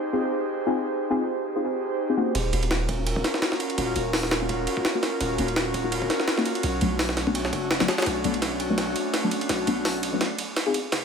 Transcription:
Already playing: analog synth pad D#4 G4 G#4 C5
0.13 synth stab C4 D#4 F4 G#4
0.67 synth stab C4 D#4 F4 G#4
1.10 synth stab C4 D#4 F4 G#4
1.56 synth stab C4 D#4 F4 G#4
1.64 analog synth pad D#4 G4 G#4 C5
2.09 synth stab C4 D#4 F4 G#4
2.17 synth stab A#3 C#4 D#4 F#4
2.35 808-style bass D#1, analog synth pad C#4 F4 F#4 A#4, kick, ride
2.53 808-style bass D#1, synth stab A#3 C#4 D#4 F#4, ride
2.63 analog synth pad C#4 F4 F#4 A#4, ride
2.71 snare, ride
2.89 kick, ride
2.98 synth stab A#3 C#4 D#4 F#4
3.07 ride
3.16 kick
3.24 snare, ride
3.34 snare
3.42 snare, ride
3.52 synth stab A#3 C#4 D#4, snare
3.60 ride
3.70 ride
3.78 808-style bass D#1, analog synth pad C#4 F4 F#4 A#4, kick, ride
3.96 808-style bass D#1, synth stab A#3 C#4 D#4 F#4, ride
4.05 analog synth pad C#4 F4 F#4 A#4
4.13 snare, open hi-hat
4.23 snare
4.31 snare, ride
4.41 synth stab A#3 C#4 D#4 F#4
4.49 kick, ride
4.67 ride
4.77 kick
4.85 snare, ride
4.95 synth stab A#3 C#4 D#4 F#4
5.03 snare, ride
5.21 808-style bass D#1, analog synth pad C#4 F4 F#4 A#4, kick, ride
5.38 808-style bass D#1, synth stab A#3 C#4 D#4 F#4, ride
5.48 analog synth pad C#4 F4 F#4 A#4, ride
5.56 snare, ride
5.74 kick, ride
5.84 synth stab A#3 C#4 D#4 F#4
5.92 ride
6.02 kick
6.10 snare, ride
6.20 snare
6.28 snare, ride
6.38 synth stab A#3 C#4 D#4 F#4, snare
6.46 ride
6.55 ride
6.63 808-style bass B1, analog synth pad A3 C#4 D4 F#4, kick, ride
6.81 808-style bass B1, synth stab F#3 A3 B3 D4, ride
6.91 analog synth pad A3 C#4 D4 F#4
6.99 snare, open hi-hat
7.09 snare
7.17 snare, ride
7.27 synth stab F#3 A3 B3 D4, kick
7.35 ride
7.45 snare
7.53 808-style bass F#1, kick, ride
7.71 snare, ride
7.80 808-style bass F#1, synth stab F#3 A3 B3 D4, snare, ride
7.88 snare, ride
7.98 snare, ride
8.02 snare, ride
8.06 808-style bass B1, analog synth pad A3 C#4 D4 F#4, snare, ride
8.24 808-style bass B1, synth stab F#3 A3 B3 D4, ride
8.34 analog synth pad A3 C#4 D4 F#4, ride
8.42 snare, ride
8.60 ride
8.70 synth stab F#3 A3 B3 D4
8.78 snare, ride
8.96 ride
9.14 snare, ride
9.23 synth stab F#3 A3 B3 D4
9.31 ride
9.41 ride
9.49 808-style bass B1, analog synth pad A3 C#4 D4 F#4, snare, ride
9.67 808-style bass B1, synth stab F#3 A3 B3 D4, ride
9.77 analog synth pad A3 C#4 D4 F#4
9.85 snare, open hi-hat
10.03 ride
10.13 synth stab F#3 A3 B3 D4
10.21 snare, ride
10.39 ride
10.57 snare, ride
10.66 synth stab C4 D#4 F4 G#4
10.74 ride
10.92 808-style bass F1, analog synth pad D#4 G4 G#4 C5, snare, ride

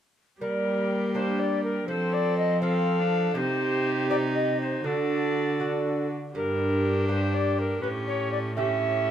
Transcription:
0.41 lute G3, cello G3, viola A#3 G4, recorder A#4
1.14 lute A#3 D4 G4, recorder C5
1.39 recorder D5
1.63 recorder A#4
1.88 lute F3, cello F3, viola C4 A4, recorder C5
2.13 recorder D5
2.37 recorder D#5
2.61 lute C4 F4 A4, viola C4 A4, recorder F5
3.00 viola D4
3.35 lute C3, cello C3, viola D#4 G4, recorder C5
4.09 lute C4 D#4 G4, recorder D5
4.35 recorder D#5
4.60 recorder C5
4.84 lute D3, cello D3, viola D4 F#4, recorder A4
5.60 lute D4 F#4
6.33 cello G2, lute G2, viola D4 G4, recorder A#4
7.08 lute A#3 D4 G4, recorder C5
7.34 recorder D5
7.58 recorder A#4
7.81 cello A2, lute A2, viola C#4 G4, recorder B4
8.07 recorder C#5
8.32 recorder D5
8.55 lute A3 C#4 G4, viola C#4 G4, recorder E5

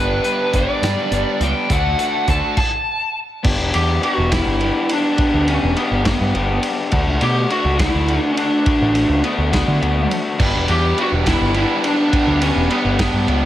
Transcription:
Already playing: picked electric bass G1, overdriven electric guitar G3 B3 D4 G4 B4, lead electric guitar B4
0.24 overdriven electric guitar B3 D4 G4 B4, closed hi-hat
0.53 picked electric bass G1, overdriven electric guitar G3 B3 D4 G4 B4, lead electric guitar D5, kick, closed hi-hat
0.82 picked electric bass G2, overdriven electric guitar G3 B3 D4 G4 B4, snare, closed hi-hat
1.11 picked electric bass G1, overdriven electric guitar G3 B3 D4 G4 B4, closed hi-hat
1.40 picked electric bass C#2, overdriven electric guitar D4 G4, lead electric guitar G5, closed hi-hat
1.69 picked electric bass D2, overdriven electric guitar D3 A3 D4 F#4 A4, lead electric guitar F#5, kick, closed hi-hat
1.98 overdriven electric guitar D4 F#4 A4, closed hi-hat
2.27 picked electric bass D2, overdriven electric guitar D3 A3 D4 F#4, lead electric guitar A5, kick, closed hi-hat
2.31 overdriven electric guitar A4
2.57 lead electric guitar A5, kick, crash
3.43 picked electric bass G1, overdriven electric guitar B3 D4 G4, kick, crash
3.59 picked electric bass E1
3.72 picked electric bass E2, overdriven electric guitar D4 G4, lead electric guitar G4, ride
4.01 overdriven electric guitar B3 D4 G4, lead electric guitar F#4, ride
4.18 picked electric bass E1
4.30 overdriven electric guitar B3 D4 G4, lead electric guitar E4, kick, snare, ride
4.47 picked electric bass G1
4.61 overdriven electric guitar B3 D4 G4, ride
4.89 lead electric guitar D4, ride
5.17 overdriven electric guitar B3 D4 G4, kick, ride
5.34 picked electric bass D2
5.47 lead electric guitar C#4, overdriven electric guitar D4 G4, ride
5.63 picked electric bass E1
5.77 overdriven electric guitar B3 D4 G4, lead electric guitar B3, ride
5.91 picked electric bass G1
6.05 lead electric guitar B3, overdriven electric guitar B3 D4 G4, kick, snare, ride
6.21 picked electric bass G2
6.34 picked electric bass G1, overdriven electric guitar B3 D4 G4, ride
6.63 ride
6.91 picked electric bass D2, overdriven electric guitar A3 D4 F#4, kick, ride
7.07 picked electric bass C#2
7.21 picked electric bass B2, overdriven electric guitar D4 F#4, lead electric guitar G4, ride
7.49 overdriven electric guitar A3 D4 F#4, lead electric guitar F#4, ride
7.64 picked electric bass C#2
7.78 overdriven electric guitar A3 D4 F#4, lead electric guitar E4, kick, snare, ride
7.94 picked electric bass D2
8.08 overdriven electric guitar A3 D4 F#4, ride
8.20 lead electric guitar D4
8.31 lead electric guitar C#4
8.37 lead electric guitar D4, ride
8.66 overdriven electric guitar A3 D4 F#4, kick, ride
8.81 picked electric bass A1
8.95 overdriven electric guitar D4 F#4, ride
9.09 picked electric bass C#2
9.23 overdriven electric guitar A3 D4 F#4, lead electric guitar B3, ride
9.38 picked electric bass D2
9.51 overdriven electric guitar A3 D4 F#4, lead electric guitar B3, kick, snare, ride
9.68 picked electric bass D3
9.81 picked electric bass D2, overdriven electric guitar A3 D4 F#4, ride
10.11 ride
10.39 picked electric bass G1, overdriven electric guitar G3 B3 D4 G4 B4, kick, crash
10.55 picked electric bass E1
10.68 picked electric bass E2, overdriven electric guitar B3 D4 G4 B4, lead electric guitar G4, ride
10.97 overdriven electric guitar G3 B3 D4 G4 B4, lead electric guitar F#4, ride
11.12 picked electric bass E1
11.26 overdriven electric guitar B3 D4 G4 B4, lead electric guitar E4, kick, snare, ride
11.41 picked electric bass G1
11.54 overdriven electric guitar G3 B3 D4 G4 B4, lead electric guitar E4, ride
11.83 overdriven electric guitar B3 D4 B4, lead electric guitar D4, ride
12.12 overdriven electric guitar G3 B3 D4 G4 B4, kick, ride
12.27 picked electric bass D2
12.41 overdriven electric guitar B3 D4 G4 B4, lead electric guitar C#4, ride
12.56 picked electric bass E1
12.69 overdriven electric guitar G3 B3 D4 G4 B4, lead electric guitar B3, ride
12.85 picked electric bass G1
12.98 overdriven electric guitar B3 D4 G4 B4, lead electric guitar B3, kick, snare, ride
13.13 picked electric bass G2
13.26 picked electric bass C#2, overdriven electric guitar G3 B3 D4 G4 B4, ride

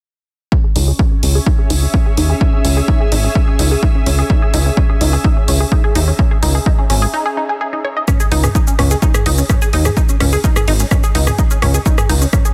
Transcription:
0.52 synth arpeggio sound C#4, ambient pad C#4, kick
0.64 synth arpeggio sound G#4
0.76 analog synth bass C#2, synth arpeggio sound D#4, open hi-hat
0.88 synth arpeggio sound G#4, ambient pad G#4
0.99 synth arpeggio sound D#4, kick
1.04 ambient pad E5
1.12 synth arpeggio sound C#4
1.23 analog synth bass C#2, synth arpeggio sound C#4, open hi-hat
1.35 synth arpeggio sound G#4
1.47 synth arpeggio sound D#4, kick
1.59 synth arpeggio sound G#4
1.70 analog synth bass C#2, synth arpeggio sound D#4, open hi-hat
1.82 synth arpeggio sound C#4
1.94 synth arpeggio sound C#4, kick
2.06 synth arpeggio sound G#4
2.17 analog synth bass D#2, synth arpeggio sound D#4, open hi-hat
2.30 synth arpeggio sound G#4
2.41 synth arpeggio sound D#4, kick
2.53 synth arpeggio sound C#4
2.65 analog synth bass C#2, synth arpeggio sound C#4, open hi-hat
2.77 synth arpeggio sound G#4
2.88 synth arpeggio sound D#4, kick
3.01 synth arpeggio sound G#4
3.12 analog synth bass G#1, synth arpeggio sound D#4, open hi-hat
3.24 synth arpeggio sound C#4
3.35 synth arpeggio sound C#4, kick
3.48 synth arpeggio sound G#4
3.59 analog synth bass C#2, synth arpeggio sound D#4, open hi-hat
3.71 synth arpeggio sound G#4
3.83 synth arpeggio sound D#4, kick
3.95 synth arpeggio sound C#4
4.06 analog synth bass C#2, synth arpeggio sound C#4, open hi-hat
4.19 synth arpeggio sound G#4
4.30 synth arpeggio sound D#4, kick
4.42 synth arpeggio sound G#4
4.54 analog synth bass C#2, synth arpeggio sound D#4, open hi-hat
4.66 synth arpeggio sound C#4
4.77 synth arpeggio sound C#4, kick
4.90 synth arpeggio sound G#4
5.01 analog synth bass C#2, synth arpeggio sound D#4, open hi-hat
5.13 synth arpeggio sound G#4
5.24 synth arpeggio sound D#4, kick
5.37 synth arpeggio sound C#4
5.48 analog synth bass C#2, synth arpeggio sound C#4, open hi-hat
5.60 synth arpeggio sound G#4
5.72 synth arpeggio sound D#4, kick
5.84 synth arpeggio sound G#4
5.95 analog synth bass D#2, synth arpeggio sound D#4, open hi-hat
6.08 synth arpeggio sound C#4
6.19 synth arpeggio sound C#4, kick
6.31 synth arpeggio sound G#4
6.43 analog synth bass C#2, synth arpeggio sound D#4, open hi-hat
6.55 synth arpeggio sound G#4
6.66 synth arpeggio sound D#4, kick
6.78 synth arpeggio sound C#4
6.90 analog synth bass G#1, synth arpeggio sound C#4, open hi-hat
7.02 synth arpeggio sound G#4
7.14 synth arpeggio sound D#4
7.26 synth arpeggio sound G#4
7.37 synth arpeggio sound D#4
7.49 synth arpeggio sound G#4
7.61 synth arpeggio sound G#4
7.73 synth arpeggio sound D#4
7.84 synth arpeggio sound C#5
7.97 synth arpeggio sound D#5
8.08 synth arpeggio sound C#4, kick, cross-stick, mid tom, shaker
8.20 synth arpeggio sound G#4, shaker
8.31 analog synth bass C#2, synth arpeggio sound D#4, open hi-hat
8.44 synth arpeggio sound G#4, cross-stick, mid tom, shaker
8.55 synth arpeggio sound D#4, kick, shaker
8.67 synth arpeggio sound C#4, shaker
8.79 analog synth bass C#2, synth arpeggio sound C#4, cross-stick, mid tom, open hi-hat
8.91 synth arpeggio sound G#4, shaker
9.02 synth arpeggio sound D#4, kick, shaker
9.14 synth arpeggio sound G#4, cross-stick, mid tom, shaker
9.26 analog synth bass C#2, synth arpeggio sound D#4, open hi-hat
9.38 synth arpeggio sound C#4, shaker
9.50 synth arpeggio sound C#4, kick, cross-stick, mid tom, shaker
9.62 synth arpeggio sound G#4, shaker
9.73 analog synth bass D#2, synth arpeggio sound D#4, open hi-hat
9.85 synth arpeggio sound G#4, cross-stick, mid tom, shaker
9.97 synth arpeggio sound D#4, kick, shaker
10.09 synth arpeggio sound C#4, shaker
10.20 analog synth bass C#2, synth arpeggio sound C#4, cross-stick, mid tom, open hi-hat
10.33 synth arpeggio sound G#4, shaker
10.44 synth arpeggio sound D#4, kick, shaker
10.56 synth arpeggio sound G#4, cross-stick, mid tom, shaker
10.68 analog synth bass G#1, synth arpeggio sound D#4, open hi-hat
10.80 synth arpeggio sound C#4, shaker
10.91 synth arpeggio sound C#4, kick, cross-stick, mid tom, shaker
11.03 synth arpeggio sound G#4, shaker
11.15 analog synth bass C#2, synth arpeggio sound D#4, open hi-hat
11.27 synth arpeggio sound G#4, cross-stick, mid tom, shaker
11.39 synth arpeggio sound D#4, kick, shaker
11.51 synth arpeggio sound C#4, shaker
11.62 analog synth bass C#2, synth arpeggio sound C#4, cross-stick, mid tom, open hi-hat
11.74 synth arpeggio sound G#4, shaker
11.86 synth arpeggio sound D#4, kick, shaker
11.98 synth arpeggio sound G#4, cross-stick, mid tom, shaker
12.09 analog synth bass C#2, synth arpeggio sound D#4, open hi-hat
12.22 synth arpeggio sound C#4, shaker
12.33 synth arpeggio sound C#4, kick, cross-stick, mid tom, shaker
12.45 synth arpeggio sound G#4, shaker

